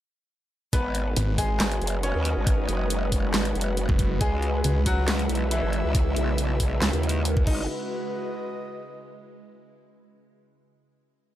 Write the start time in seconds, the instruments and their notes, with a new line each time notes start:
0.73 wobble bass G#1, ambient pad G#3 D#4 B4, grand piano B3 B4, analog synth pad F#4, kick, closed hi-hat
0.95 closed hi-hat
0.99 analog synth pad B4
1.16 detuned saw bass G#1, closed hi-hat
1.38 grand piano G#3 G#4, kick, open hi-hat
1.56 analog synth pad D#5
1.60 wobble bass G#1, snare, clap, closed hi-hat
1.72 closed hi-hat
1.82 wobble bass F#1, closed hi-hat
1.87 closed hi-hat
2.03 grand piano C#4 C#5, closed hi-hat
2.15 wobble bass D#2
2.25 closed hi-hat
2.37 wobble bass G#1
2.47 kick, closed hi-hat
2.68 wobble bass F#1, closed hi-hat
2.90 closed hi-hat
3.12 kick, open hi-hat
3.34 wobble bass G#1, snare, clap, closed hi-hat
3.45 closed hi-hat
3.55 wobble bass F#1, closed hi-hat
3.61 closed hi-hat
3.77 closed hi-hat
3.89 detuned saw bass F#1, kick
3.99 kick, closed hi-hat
4.21 wobble bass C#2, ambient pad C#3 E4, grand piano G#3 G#4, kick, closed hi-hat
4.42 analog synth pad E5, closed hi-hat
4.64 detuned saw bass C#2, closed hi-hat
4.86 grand piano F#3 F#4, kick, open hi-hat
5.08 wobble bass C#2, snare, clap, closed hi-hat
5.19 closed hi-hat
5.29 wobble bass B1, closed hi-hat
5.35 closed hi-hat
5.51 grand piano E3 E4, closed hi-hat
5.63 wobble bass G#1
5.73 closed hi-hat
5.84 wobble bass C#2
5.95 kick, closed hi-hat
6.16 wobble bass B1, closed hi-hat
6.38 closed hi-hat
6.60 kick, open hi-hat
6.82 wobble bass C#2, snare, clap, closed hi-hat
6.93 wobble bass D#2, closed hi-hat
7.03 closed hi-hat
7.09 closed hi-hat
7.25 closed hi-hat
7.37 kick
7.47 wobble bass G#1, grand piano D#4, analog synth pad F#4, kick, crash
7.54 analog synth pad B4
7.83 analog synth pad D#5